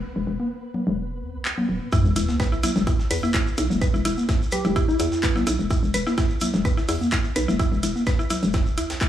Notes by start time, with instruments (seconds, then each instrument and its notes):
Already playing: synth texture B3 B4
0.16 fm bass E1
0.27 fm bass E1
0.40 high conga
0.74 high conga, low conga
0.87 fm bass E1, low conga
1.22 fm bass E2
1.34 fm bass B1
1.45 clap
1.58 high conga, low conga
1.69 fm bass D1
1.92 synth arpeggio sound E4, kick, ride, sub drop, shekere
2.05 fm bass E1, shekere
2.16 fm bass E1, synth arpeggio sound E4, closed hi-hat, ride, shekere
2.29 snare, high conga, shekere
2.40 synth arpeggio sound B4, kick, snare, ride, shekere
2.52 synth arpeggio sound E4, shekere
2.63 synth arpeggio sound E4, closed hi-hat, ride, high conga, low conga, shekere
2.76 fm bass E1, snare, low conga, shekere
2.87 synth arpeggio sound E4, kick, ride, shekere
2.99 snare, shekere
3.11 fm bass E2, synth arpeggio sound B4, closed hi-hat, open hi-hat, shekere
3.23 synth arpeggio sound E4, high conga, shekere
3.34 synth arpeggio sound E4, kick, snare, clap, closed hi-hat, ride, shekere
3.47 shekere
3.58 fm bass B1, synth arpeggio sound E4, closed hi-hat, ride, shekere
3.70 fm bass E1, high conga, low conga, shekere
3.82 synth arpeggio sound B4, kick, ride, shekere
3.94 fm bass E1, synth arpeggio sound E4, shekere
4.05 fm bass E1, synth arpeggio sound E4, closed hi-hat, ride, shekere
4.17 high conga, shekere
4.29 synth arpeggio sound E4, kick, snare, ride, shekere
4.42 shekere
4.52 synth pluck G4, synth arpeggio sound B4, closed hi-hat, ride, low conga, shekere
4.65 fm bass E1, synth arpeggio sound E4, ride, low conga, shekere
4.76 synth arpeggio sound E4, kick, ride, shekere
4.88 synth pluck E4, shekere
4.99 fm bass E2, synth arpeggio sound E4, closed hi-hat, ride, shekere
5.12 snare, shekere
5.23 synth arpeggio sound B4, kick, snare, clap, closed hi-hat, ride, shekere
5.36 synth arpeggio sound E4, snare, high conga, low conga, shekere
5.47 fm bass B1, synth arpeggio sound E4, closed hi-hat, ride, shekere
5.59 fm bass E1, shekere
5.70 synth arpeggio sound E4, kick, ride, shekere
5.83 fm bass E1, shekere
5.94 fm bass E1, synth arpeggio sound B4, closed hi-hat, ride, shekere
6.07 synth arpeggio sound E4, snare, high conga, shekere
6.18 synth arpeggio sound E4, kick, snare, ride, shekere
6.29 shekere
6.41 synth arpeggio sound E4, closed hi-hat, ride, high conga, low conga, shekere
6.53 fm bass E1, snare, low conga, shekere
6.65 synth arpeggio sound B4, kick, ride, shekere
6.77 synth arpeggio sound E4, snare, shekere
6.89 fm bass E2, synth arpeggio sound E4, closed hi-hat, open hi-hat, shekere
7.01 high conga, shekere
7.11 synth arpeggio sound E4, kick, snare, clap, closed hi-hat, ride, shekere
7.24 shekere
7.36 fm bass B1, synth arpeggio sound B4, closed hi-hat, ride, shekere
7.48 fm bass E1, synth arpeggio sound E4, high conga, low conga, shekere
7.59 synth arpeggio sound E4, kick, ride, shekere
7.72 fm bass E1, shekere
7.83 fm bass E1, synth arpeggio sound E4, closed hi-hat, ride, shekere
7.96 high conga, shekere
8.06 synth arpeggio sound B4, kick, snare, ride, shekere
8.19 synth arpeggio sound E4, shekere
8.30 synth arpeggio sound E4, closed hi-hat, ride, low conga, shekere
8.43 fm bass E1, ride, low conga, shekere
8.53 synth arpeggio sound E4, kick, snare, ride, shekere
8.66 shekere
8.78 fm bass E2, synth arpeggio sound E4, closed hi-hat, ride, shekere
8.90 fm bass B1, snare, ride, shekere
9.01 synth arpeggio sound E4, kick, clap, closed hi-hat, shekere